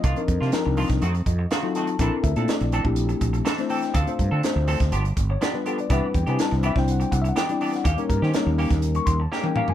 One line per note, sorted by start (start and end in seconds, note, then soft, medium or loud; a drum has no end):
0.00 0.13 C2 medium
0.00 0.19 D#3 medium
0.00 0.19 A#3 medium
0.00 0.19 D4 medium
0.00 0.39 D#5 medium
0.00 kick loud
0.00 closed hi-hat medium
0.04 0.19 F4 medium
0.16 0.48 F3 medium
0.16 0.48 C4 medium
0.16 0.49 D4 medium
0.16 0.49 D#4 medium
0.16 0.49 A#4 medium
0.16 closed hi-hat soft
0.28 0.38 F2 medium
0.28 muted clean electric guitar stroke soft
0.28 kick medium
0.28 closed hi-hat medium
0.41 0.50 C3 medium
0.41 0.51 A#3 soft
0.41 0.52 D4 soft
0.41 0.52 F4 soft
0.41 snare soft
0.52 1.01 F3 medium
0.52 1.02 C4 medium
0.52 1.02 D4 medium
0.52 1.02 D#4 medium
0.52 1.02 A#4 loud
0.52 muted clean electric guitar stroke soft
0.52 snare loud
0.52 closed hi-hat medium
0.66 0.84 C2 medium
0.66 muted clean electric guitar stroke soft
0.77 0.90 D#3 medium
0.77 0.90 A#3 medium
0.77 0.89 D4 medium
0.77 0.89 F4 medium
0.77 open hi-hat medium
0.89 0.99 C2 medium
0.89 muted clean electric guitar stroke soft
0.89 kick medium
0.89 snare soft
0.89 closed hi-hat soft
1.01 1.21 F2 medium
1.01 1.14 D#3 medium
1.01 1.14 A3 medium
1.01 1.13 C4 medium
1.01 1.13 F#4 medium
1.01 closed hi-hat medium
1.14 muted clean electric guitar stroke medium
1.14 closed hi-hat soft
1.26 1.45 F2 medium
1.26 1.49 D#5 medium
1.26 muted clean electric guitar stroke soft
1.26 kick medium
1.26 closed hi-hat medium
1.39 muted clean electric guitar stroke soft
1.51 1.66 D#3 medium
1.51 1.66 A3 medium
1.51 1.66 C4 medium
1.51 1.66 F#4 medium
1.51 1.74 F5 medium
1.51 snare medium
1.51 closed hi-hat medium
1.62 1.95 F#3 medium
1.62 1.95 C4 medium
1.62 1.95 D#4 medium
1.62 1.95 F4 medium
1.62 1.96 A4 medium
1.75 1.88 D#3 medium
1.75 1.88 A3 medium
1.75 1.88 C4 medium
1.75 1.88 F#4 medium
1.75 1.98 A5 medium
1.75 closed hi-hat medium
1.87 muted clean electric guitar stroke soft
1.87 closed hi-hat soft
1.99 2.09 A#1 medium
1.99 2.15 E3 medium
1.99 2.32 C4 medium
1.99 2.15 C4 medium
1.99 2.32 D4 medium
1.99 2.15 D4 medium
1.99 2.32 E4 medium
1.99 2.32 A4 medium
1.99 2.15 A4 medium
1.99 2.33 A#4 medium
1.99 kick medium
1.99 closed hi-hat medium
2.23 2.33 D2 medium
2.23 2.47 E5 medium
2.23 muted clean electric guitar stroke soft
2.23 kick medium
2.23 closed hi-hat medium
2.36 2.45 A#2 medium
2.36 2.79 A3 medium
2.36 2.79 C4 medium
2.36 2.48 C4 soft
2.36 2.48 D4 soft
2.36 2.80 D4 medium
2.36 2.80 E4 medium
2.36 2.48 A4 medium
2.36 2.80 A4 medium
2.36 closed hi-hat soft
2.48 2.94 D5 medium
2.48 muted clean electric guitar stroke soft
2.48 snare loud
2.48 closed hi-hat medium
2.60 2.79 A#1 medium
2.60 muted clean electric guitar stroke soft
2.60 closed hi-hat soft
2.72 2.85 E3 medium
2.72 2.85 C4 medium
2.72 2.84 D4 medium
2.72 2.84 A4 medium
2.72 closed hi-hat medium
2.84 3.13 A#1 medium
2.84 3.49 A3 medium
2.84 3.49 C4 medium
2.84 3.49 D4 medium
2.84 3.50 E4 medium
2.84 3.50 G4 medium
2.84 muted clean electric guitar stroke soft
2.84 kick medium
2.96 closed hi-hat medium
3.09 muted clean electric guitar stroke soft
3.09 closed hi-hat soft
3.21 3.40 A#1 medium
3.21 muted clean electric guitar stroke soft
3.21 kick medium
3.21 closed hi-hat medium
3.33 muted clean electric guitar stroke soft
3.33 closed hi-hat soft
3.45 3.60 E3 medium
3.45 3.60 C4 medium
3.45 3.61 D4 medium
3.45 3.61 A4 medium
3.45 snare medium
3.45 closed hi-hat medium
3.58 3.95 A3 medium
3.58 3.95 C4 medium
3.58 3.95 D4 medium
3.58 3.95 E4 medium
3.58 3.96 C5 medium
3.58 snare soft
3.58 closed hi-hat soft
3.69 3.82 E3 medium
3.69 3.81 C4 medium
3.69 3.81 D4 medium
3.69 3.81 A4 medium
3.69 3.94 G5 loud
3.69 open hi-hat medium
3.82 muted clean electric guitar stroke soft
3.82 snare soft
3.82 closed hi-hat soft
3.94 4.04 D2 medium
3.94 4.09 F3 medium
3.94 4.09 C4 medium
3.94 4.09 D4 medium
3.94 4.09 A4 medium
3.94 4.41 F5 medium
3.94 kick loud
3.94 closed hi-hat medium
4.06 4.39 A3 medium
4.06 4.39 C4 medium
4.06 4.39 D4 medium
4.06 4.39 F4 medium
4.06 4.40 C5 medium
4.06 closed hi-hat soft
4.19 4.29 G2 medium
4.19 muted clean electric guitar stroke soft
4.19 kick medium
4.19 closed hi-hat medium
4.31 4.41 D3 medium
4.31 4.42 C4 soft
4.31 4.43 D4 soft
4.31 4.43 A4 medium
4.43 4.92 A3 medium
4.43 4.93 C4 medium
4.43 4.93 D4 medium
4.43 4.93 F4 medium
4.43 4.93 C5 medium
4.43 muted clean electric guitar stroke soft
4.43 snare loud
4.43 closed hi-hat medium
4.56 4.74 D2 medium
4.56 muted clean electric guitar stroke soft
4.68 4.80 F3 medium
4.68 4.79 C4 medium
4.68 4.79 D4 medium
4.68 4.79 A4 loud
4.68 open hi-hat medium
4.80 4.89 D2 medium
4.80 muted clean electric guitar stroke soft
4.80 kick medium
4.80 snare soft
4.80 closed hi-hat soft
4.92 5.11 G1 loud
4.92 5.05 F3 medium
4.92 5.04 B3 medium
4.92 5.04 D4 medium
4.92 5.03 G4 medium
4.92 closed hi-hat medium
5.05 muted clean electric guitar stroke medium
5.05 closed hi-hat soft
5.16 5.35 G1 medium
5.16 muted clean electric guitar stroke soft
5.16 kick medium
5.16 closed hi-hat medium
5.30 5.42 C#5 medium
5.30 muted clean electric guitar stroke soft
5.41 5.56 F3 medium
5.41 5.56 B3 medium
5.41 5.56 D4 medium
5.41 5.56 G4 medium
5.41 5.54 D5 medium
5.41 snare loud
5.41 closed hi-hat medium
5.53 5.85 G3 medium
5.53 5.85 B3 medium
5.53 5.86 D4 medium
5.53 5.86 F4 medium
5.53 5.86 B4 medium
5.65 5.78 F3 medium
5.65 5.77 B3 medium
5.65 5.77 D4 medium
5.65 5.77 G4 medium
5.65 5.78 A4 medium
5.65 closed hi-hat medium
5.78 5.91 D5 medium
5.78 muted clean electric guitar stroke soft
5.78 closed hi-hat soft
5.89 5.99 C2 medium
5.89 6.05 E3 medium
5.89 6.22 G3 medium
5.89 6.05 B3 medium
5.89 6.22 C4 medium
5.89 6.22 D4 medium
5.89 6.05 D4 medium
5.89 6.22 E4 medium
5.89 6.05 G4 medium
5.89 6.23 B4 medium
5.89 6.03 E5 medium
5.89 kick loud
5.89 closed hi-hat medium
6.06 6.16 F#5 medium
6.14 6.24 E2 medium
6.14 6.27 G5 medium
6.14 muted clean electric guitar stroke soft
6.14 kick medium
6.14 closed hi-hat medium
6.26 6.36 C3 medium
6.26 6.70 G3 medium
6.26 6.38 B3 soft
6.26 6.70 C4 medium
6.26 6.38 D4 medium
6.26 6.70 D4 medium
6.26 6.70 E4 medium
6.26 6.39 G4 medium
6.26 6.70 B4 medium
6.26 6.40 G#5 medium
6.26 closed hi-hat soft
6.39 6.52 A5 medium
6.39 muted clean electric guitar stroke soft
6.39 snare medium
6.39 closed hi-hat medium
6.51 6.70 C2 medium
6.51 muted clean electric guitar stroke soft
6.51 snare soft
6.51 closed hi-hat soft
6.56 6.65 C5 medium
6.63 6.76 E3 medium
6.63 6.75 B3 medium
6.63 6.74 D4 medium
6.63 6.74 G4 medium
6.63 6.76 E5 medium
6.63 closed hi-hat medium
6.75 7.03 C2 medium
6.75 7.39 G3 medium
6.75 7.40 C4 medium
6.75 7.40 D4 medium
6.75 7.40 E4 medium
6.75 7.40 C5 medium
6.75 6.89 G5 loud
6.75 muted clean electric guitar stroke soft
6.75 kick medium
6.75 snare soft
6.88 7.01 F#5 medium
6.88 closed hi-hat medium
7.00 7.12 G5 medium
7.00 muted clean electric guitar stroke soft
7.00 closed hi-hat soft
7.11 7.31 C2 medium
7.11 7.20 F#5 loud
7.11 muted clean electric guitar stroke soft
7.11 kick medium
7.11 closed hi-hat medium
7.22 7.29 E5 loud
7.22 muted clean electric guitar stroke soft
7.22 closed hi-hat soft
7.29 7.36 F#5 medium
7.36 7.51 E3 medium
7.36 7.51 B3 medium
7.36 7.51 D4 medium
7.36 7.51 G4 medium
7.36 7.71 G5 loud
7.36 snare loud
7.36 closed hi-hat medium
7.49 7.85 G3 medium
7.49 7.86 C4 medium
7.49 7.86 D4 medium
7.49 7.86 E4 medium
7.49 7.86 D5 medium
7.49 closed hi-hat soft
7.61 7.73 E3 medium
7.61 7.72 B3 medium
7.61 7.72 D4 medium
7.61 7.71 G4 medium
7.61 open hi-hat medium
7.73 7.86 F#5 medium
7.73 muted clean electric guitar stroke soft
7.73 snare soft
7.73 closed hi-hat soft
7.84 7.95 D#2 medium
7.84 8.00 A#3 medium
7.84 8.00 C#4 medium
7.84 8.00 G4 medium
7.84 7.98 F5 medium
7.84 kick loud
7.84 closed hi-hat medium
7.97 8.29 G3 medium
7.97 8.29 A#3 medium
7.97 8.29 C#4 medium
7.97 8.30 D#4 medium
7.97 8.08 A#4 medium
7.97 8.10 C#5 medium
7.97 closed hi-hat soft
8.09 8.19 G2 medium
8.09 8.21 A#4 medium
8.09 muted clean electric guitar stroke soft
8.09 kick medium
8.09 closed hi-hat medium
8.22 8.31 D#3 medium
8.22 8.33 C#4 soft
8.22 8.34 G4 medium
8.22 snare soft
8.33 9.19 G3 medium
8.33 9.20 A#3 medium
8.33 9.20 C#4 medium
8.33 9.20 D#4 medium
8.33 9.21 A#4 medium
8.33 8.50 C#5 medium
8.33 muted clean electric guitar stroke soft
8.33 snare loud
8.33 closed hi-hat medium
8.46 8.65 D#2 medium
8.46 muted clean electric guitar stroke soft
8.58 8.71 A#3 medium
8.58 8.70 C#4 medium
8.58 8.69 G4 medium
8.58 open hi-hat medium
8.70 8.98 D#2 medium
8.70 muted clean electric guitar stroke medium
8.70 kick medium
8.70 snare soft
8.70 closed hi-hat soft
8.82 closed hi-hat medium
8.95 9.07 C#6 medium
8.95 muted clean electric guitar stroke soft
8.95 closed hi-hat soft
9.06 9.25 D#2 medium
9.06 9.18 C6 loud
9.06 muted clean electric guitar stroke soft
9.06 kick medium
9.06 closed hi-hat medium
9.20 9.32 A5 medium
9.20 muted clean electric guitar stroke soft
9.32 9.46 A#3 medium
9.32 9.46 C#4 medium
9.32 9.47 G4 medium
9.32 9.44 A#5 medium
9.32 snare medium
9.42 9.74 G3 medium
9.42 9.74 A#3 medium
9.42 9.74 C#4 medium
9.42 9.74 D#4 medium
9.42 9.74 A#4 medium
9.42 9.56 G5 medium
9.42 high tom medium
9.55 9.68 A#3 medium
9.55 9.68 C#4 medium
9.55 9.68 G4 medium
9.55 9.68 F5 loud
9.55 mid tom medium
9.68 9.74 G#5 medium
9.68 muted clean electric guitar stroke soft
9.68 floor tom medium